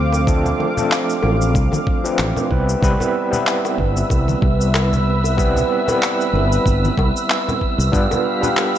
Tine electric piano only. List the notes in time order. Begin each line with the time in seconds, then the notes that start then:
Already playing: F3 A3 C4 D4 A4
0.27 F3 A3 C4 D4 A4
0.76 F3 A3 C4 D4 A4
2.04 F3 A3 C4 D4 B4
2.50 G3 B3 C4 E4 B4
2.82 G3 B3 C4 E4 B4
3.30 G3 B3 C4 E4 B4
5.37 G3 B3 C4 E4 B4
5.86 G3 B3 C4 E4 B4
7.92 G3 B3 D4 F4 B4
8.41 G3 B3 D4 F4 B4